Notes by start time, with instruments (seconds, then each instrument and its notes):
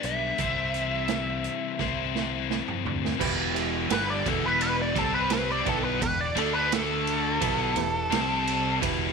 Already playing: overdriven electric guitar G3 B3 D4 B4
0.03 fingered electric bass B1, lead electric guitar E5, closed hi-hat
0.38 fingered electric bass C2, overdriven electric guitar C3 E3 G3 C4 E4 C5, kick, closed hi-hat
0.74 closed hi-hat
1.08 snare, closed hi-hat
1.44 closed hi-hat
1.79 fingered electric bass C2, overdriven electric guitar C3 E3 G3 C4 E4 C5, kick, snare
2.15 snare
2.50 snare
2.68 mid tom
2.85 fingered electric bass D2, floor tom
3.05 snare
3.19 fingered electric bass E1, overdriven electric guitar E2 B2 E3, upright piano E4 G4 B4, kick, crash
3.54 upright piano E4 G4 B4, ride
3.90 fingered electric bass G1, overdriven electric guitar G2 D3 G3, lead electric guitar B4, snare, ride
4.10 lead electric guitar D5
4.26 fingered electric bass E1, overdriven electric guitar E2 B2 E3, lead electric guitar A4, kick, ride
4.46 lead electric guitar B4
4.61 lead electric guitar B4, ride
4.82 lead electric guitar D5
4.94 fingered electric bass C2, overdriven electric guitar C3 G3 C4, upright piano C4 G4 C5, kick, snare, ride
4.98 lead electric guitar A4
5.15 lead electric guitar B4
5.30 lead electric guitar B4, snare, ride
5.51 lead electric guitar D5
5.65 fingered electric bass B1, overdriven electric guitar B2 F#3 B3, upright piano E4 B4 G5, kick, ride
5.69 lead electric guitar A4
5.84 lead electric guitar B4
6.01 fingered electric bass E1, overdriven electric guitar E2 B2, lead electric guitar B4, kick, ride
6.21 lead electric guitar D5
6.35 fingered electric bass D2, overdriven electric guitar D3 A3 D4, upright piano D4 A4 D5, lead electric guitar A4, ride
6.54 lead electric guitar B4
6.72 lead electric guitar A4, snare, ride
7.07 ride
7.40 fingered electric bass B1, overdriven electric guitar B2 F#3 B3, upright piano E4 G4 B4, kick, ride
7.75 fingered electric bass E1, overdriven electric guitar E2 B2, upright piano E4 G4 B4, snare, ride
8.10 fingered electric bass C2, overdriven electric guitar C3 G3 C4, upright piano C4 G4 C5, snare, ride
8.47 ride
8.81 fingered electric bass E1, overdriven electric guitar E2 B2 E3, upright piano E4 G4 B4, kick, ride